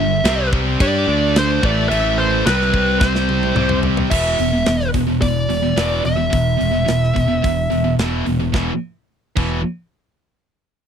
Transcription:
0.00 0.22 G1 medium
0.00 0.19 G2 medium
0.00 0.19 D3 medium
0.00 0.48 E5 loud
0.24 0.75 C2 loud
0.24 0.79 C3 medium
0.24 0.79 G3 loud
0.24 0.79 C4 loud
0.24 snare loud
0.24 crash medium
0.53 kick medium
0.80 1.06 G2 loud
0.80 1.06 G3 medium
0.80 1.06 D4 medium
0.80 1.07 G4 loud
0.80 1.37 D5 loud
0.80 kick loud
0.80 crash medium
1.07 1.59 D2 medium
1.07 1.61 D3 medium
1.07 1.61 A3 loud
1.07 1.61 D4 loud
1.36 1.65 C5 medium
1.36 snare loud
1.36 crash medium
1.62 1.89 A1 loud
1.62 1.88 A2 medium
1.62 1.88 E3 loud
1.62 1.89 A3 loud
1.62 1.89 D5 loud
1.62 kick loud
1.89 2.42 A1 loud
1.89 2.44 A2 medium
1.89 2.44 E3 loud
1.89 2.44 A3 loud
1.89 2.18 E5 loud
1.89 crash medium
2.18 2.43 C5 loud
2.45 3.52 C2 loud
2.45 3.55 C3 loud
2.45 3.55 G3 loud
2.45 3.55 C4 loud
2.45 2.97 B4 medium
2.45 snare loud
2.45 crash medium
2.61 snare soft
2.74 kick medium
3.00 3.79 C5 medium
3.00 kick loud
3.00 snare medium
3.15 snare medium
3.29 high tom medium
3.43 high tom medium
3.56 4.07 C2 loud
3.56 4.10 C3 loud
3.56 4.10 G3 loud
3.56 4.11 C4 loud
3.56 mid tom medium
3.69 mid tom medium
3.83 floor tom loud
3.97 floor tom loud
4.10 4.34 E1 medium
4.10 4.37 E2 medium
4.10 4.37 B2 loud
4.10 4.37 E3 medium
4.10 4.89 E5 loud
4.10 kick loud
4.10 crash loud
4.39 4.62 E1 medium
4.39 4.52 E2 medium
4.39 4.51 B2 medium
4.39 open hi-hat medium
4.52 4.65 E2 medium
4.52 4.66 B2 medium
4.66 4.90 E1 medium
4.66 4.90 E2 medium
4.66 4.91 B2 medium
4.66 snare loud
4.66 open hi-hat medium
4.80 snare soft
4.94 5.17 E1 medium
4.94 5.06 E2 medium
4.94 5.05 B2 medium
4.94 kick medium
4.94 open hi-hat medium
5.07 5.20 E2 medium
5.07 5.20 B2 medium
5.21 5.45 E1 medium
5.21 5.46 E2 medium
5.21 5.46 B2 medium
5.21 6.05 D5 medium
5.21 kick loud
5.21 open hi-hat medium
5.48 5.71 E1 medium
5.48 5.61 E2 medium
5.48 5.61 B2 medium
5.48 open hi-hat medium
5.62 5.75 E2 medium
5.62 5.76 B2 medium
5.76 6.00 E1 medium
5.76 6.02 E2 medium
5.76 6.02 B2 medium
5.76 6.03 E3 loud
5.76 snare loud
5.76 open hi-hat medium
6.03 6.28 E1 medium
6.03 6.16 E2 medium
6.03 6.15 B2 medium
6.03 7.95 E5 loud
6.03 open hi-hat soft
6.17 6.29 E2 medium
6.17 6.29 B2 medium
6.30 6.56 E1 medium
6.30 6.56 E2 medium
6.30 6.56 B2 medium
6.30 kick loud
6.30 open hi-hat medium
6.58 6.84 E1 medium
6.58 6.71 E2 medium
6.58 6.71 B2 medium
6.58 open hi-hat medium
6.72 6.84 E2 medium
6.72 6.85 B2 medium
6.86 7.11 E1 medium
6.86 7.11 E2 medium
6.86 7.11 B2 medium
6.86 snare medium
6.86 open hi-hat medium
7.03 snare soft
7.14 7.39 E1 medium
7.14 7.27 E2 medium
7.14 7.27 B2 medium
7.14 kick medium
7.14 open hi-hat soft
7.28 7.41 E2 medium
7.28 7.42 B2 medium
7.43 7.67 E1 medium
7.43 7.67 E2 medium
7.43 7.68 B2 medium
7.43 kick loud
7.43 open hi-hat medium
7.70 7.94 E1 medium
7.70 7.83 E2 medium
7.70 7.83 B2 medium
7.70 open hi-hat soft
7.84 7.98 E2 medium
7.84 7.98 B2 medium
7.99 8.22 E1 medium
7.99 8.24 E2 medium
7.99 8.25 B2 medium
7.99 8.25 E3 medium
7.99 snare loud
7.99 open hi-hat medium
8.26 8.50 E1 medium
8.26 8.39 E2 medium
8.26 8.39 B2 medium
8.26 open hi-hat soft
8.40 8.52 E2 medium
8.40 8.54 B2 medium
8.53 8.69 E1 medium
8.53 8.70 E2 medium
8.53 8.71 B2 medium
8.53 8.71 E3 medium
8.53 kick loud
8.53 snare medium
9.37 9.63 E1 medium
9.37 9.59 E2 medium
9.37 9.59 B2 medium
9.37 9.60 E3 medium
9.37 kick medium
9.37 crash medium

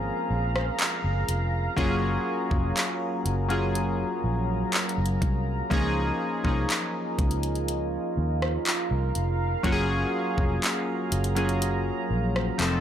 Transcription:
0.00 1.79 F3 medium
0.00 1.77 A#3 medium
0.00 1.80 C4 medium
0.00 1.78 C#4 medium
0.00 1.78 F4 loud
0.00 1.74 G#4 medium
0.00 12.55 A#4 medium
0.00 5.67 F5 medium
0.00 9.60 A#5 medium
0.30 0.69 A#1 medium
0.56 cross-stick loud
0.79 clap loud
0.79 closed hi-hat medium
1.04 1.24 F#1 medium
1.28 1.68 F1 medium
1.28 closed hi-hat medium
1.76 2.17 F#1 loud
1.76 2.92 F#3 loud
1.76 5.67 F#3 medium
1.76 2.93 A#3 loud
1.76 2.93 C#4 loud
1.76 2.93 F4 loud
1.76 2.94 G#4 loud
1.76 kick loud
1.76 closed hi-hat medium
2.51 2.71 F1 medium
2.51 kick medium
2.77 clap loud
2.77 closed hi-hat medium
3.25 4.03 F#1 medium
3.25 closed hi-hat medium
3.49 4.81 F#3 medium
3.49 4.81 A#3 medium
3.49 4.82 C#4 medium
3.49 4.82 F4 medium
3.49 4.82 G#4 medium
3.49 closed hi-hat soft
3.75 closed hi-hat medium
4.24 4.63 A#1 medium
4.73 clap loud
4.73 closed hi-hat medium
4.89 closed hi-hat medium
4.98 5.17 F#1 medium
5.06 closed hi-hat medium
5.22 5.61 C2 medium
5.22 kick loud
5.22 closed hi-hat medium
5.70 6.10 C#2 loud
5.70 6.20 F3 loud
5.70 6.20 A#3 loud
5.70 6.21 C#4 loud
5.70 6.21 D#4 loud
5.70 9.61 F4 medium
5.70 6.21 G#4 loud
5.70 7.66 D#5 medium
5.70 kick loud
5.70 closed hi-hat medium
6.44 6.64 C2 medium
6.44 7.76 F3 medium
6.44 7.76 A#3 medium
6.44 7.77 C#4 medium
6.44 7.77 D#4 medium
6.44 7.77 G#4 medium
6.44 kick medium
6.70 clap loud
6.70 closed hi-hat medium
7.19 7.97 C#2 medium
7.19 kick loud
7.19 closed hi-hat medium
7.31 closed hi-hat medium
7.43 closed hi-hat medium
7.55 closed hi-hat soft
7.68 12.56 F5 medium
7.68 closed hi-hat medium
8.17 8.56 D#2 medium
8.42 cross-stick loud
8.66 clap loud
8.66 closed hi-hat medium
8.91 9.10 C2 medium
9.15 9.55 F1 medium
9.15 closed hi-hat medium
9.63 10.04 F#1 loud
9.63 10.79 F#3 loud
9.63 12.56 F#3 medium
9.63 10.79 A#3 loud
9.63 10.80 C#4 loud
9.63 10.80 F4 loud
9.63 9.72 F#4 loud
9.63 12.57 A#5 medium
9.63 kick loud
9.63 closed hi-hat medium
9.72 10.84 G#4 loud
10.38 10.58 F1 medium
10.38 kick medium
10.64 clap loud
10.64 closed hi-hat medium
11.12 11.90 F#1 loud
11.12 closed hi-hat medium
11.24 closed hi-hat medium
11.35 12.59 F#3 medium
11.35 12.59 A#3 medium
11.35 12.60 C#4 medium
11.35 12.60 F4 medium
11.35 12.60 G#4 medium
11.35 closed hi-hat medium
11.49 closed hi-hat soft
11.62 closed hi-hat medium
12.11 12.49 A#1 medium
12.36 cross-stick loud
12.58 12.79 F1 loud
12.58 12.80 F3 medium
12.58 12.80 A3 medium
12.58 12.80 C4 medium
12.58 12.80 D#4 medium
12.58 12.80 A4 medium
12.58 clap loud
12.58 closed hi-hat medium

